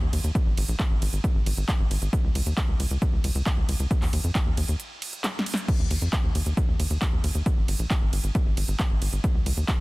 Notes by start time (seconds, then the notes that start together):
0.02 D#2
0.13 D#2, open hi-hat, ride
0.24 D#2, closed hi-hat
0.35 kick, closed hi-hat
0.46 G#1
0.58 G#1, open hi-hat, ride
0.69 A#1, closed hi-hat
0.80 kick, clap, closed hi-hat
0.91 G#1
1.02 G#1, open hi-hat, ride
1.13 G#1, closed hi-hat
1.24 kick, closed hi-hat
1.35 G#1
1.46 G#1, open hi-hat, ride
1.57 G#1, closed hi-hat
1.68 kick, clap, closed hi-hat
1.80 G#1
1.91 G#1, open hi-hat, ride
2.02 G#1, closed hi-hat
2.13 kick, closed hi-hat
2.24 C#2
2.35 C#2, open hi-hat, ride
2.46 D#2, closed hi-hat
2.57 kick, clap, closed hi-hat
2.69 C#2
2.80 C#2, open hi-hat, ride
2.91 C#2, closed hi-hat
3.02 kick, closed hi-hat
3.13 C#2
3.24 C#2, open hi-hat, ride
3.35 C#2, closed hi-hat
3.46 kick, clap, closed hi-hat
3.57 C#2
3.69 C#2, open hi-hat, ride
3.80 C#2, closed hi-hat
3.91 kick, closed hi-hat
4.02 D#2, clap, open hi-hat
4.13 D#2, open hi-hat, ride
4.24 F2, closed hi-hat
4.35 kick, clap, closed hi-hat
4.46 D#2
4.57 D#2, open hi-hat, ride
4.68 D#2, closed hi-hat
4.80 closed hi-hat
5.02 open hi-hat, ride
5.13 closed hi-hat
5.24 snare, clap, closed hi-hat
5.39 snare
5.46 open hi-hat, ride
5.54 snare, closed hi-hat
5.68 kick, closed hi-hat, crash
5.79 D#2
5.91 D#2, open hi-hat, ride
6.02 F2, closed hi-hat
6.13 kick, clap, closed hi-hat
6.24 D#2
6.35 D#2, open hi-hat, ride
6.46 D#2, closed hi-hat
6.57 kick, closed hi-hat
6.68 D#2
6.79 D#2, open hi-hat, ride
6.90 D#2, closed hi-hat
7.02 kick, clap, closed hi-hat
7.13 D#2
7.24 D#2, open hi-hat, ride
7.35 D#2, closed hi-hat
7.46 kick, closed hi-hat
7.57 G#1
7.68 G#1, open hi-hat, ride
7.79 A#1, closed hi-hat
7.91 kick, clap, closed hi-hat
8.01 G#1
8.13 G#1, open hi-hat, ride
8.24 G#1, closed hi-hat
8.35 kick, closed hi-hat
8.46 G#1
8.57 G#1, open hi-hat, ride
8.68 G#1, closed hi-hat
8.79 kick, clap, closed hi-hat
8.90 G#1
9.01 G#1, open hi-hat, ride
9.13 G#1, closed hi-hat
9.24 kick, closed hi-hat
9.35 C#2
9.46 C#2, open hi-hat, ride
9.57 D#2, closed hi-hat
9.68 kick, clap, closed hi-hat